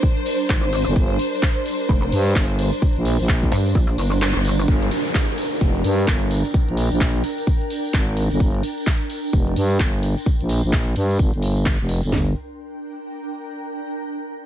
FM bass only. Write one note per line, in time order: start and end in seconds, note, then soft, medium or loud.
0.87 0.95 G1 loud
0.96 1.18 G1 loud
2.12 2.34 G2 loud
2.36 2.71 G1 medium
2.96 3.17 A#1 loud
3.20 3.50 A#1 loud
4.68 4.90 G1 loud
5.61 5.83 F1 medium
5.84 6.06 G2 medium
6.08 6.43 G1 medium
6.68 6.89 A#1 loud
6.92 7.22 A#1 loud
7.94 8.29 G#1 medium
8.31 8.39 G1 loud
8.40 8.62 G1 loud
9.33 9.55 F1 loud
9.56 9.78 G2 loud
9.80 10.15 G1 medium
10.41 10.62 A#1 loud
10.64 10.95 A#1 loud
10.96 11.18 G2 medium
11.19 11.31 G#1 medium
11.34 11.78 G1 medium
11.80 12.01 F1 loud
12.03 12.11 G1 medium
12.12 12.34 G1 loud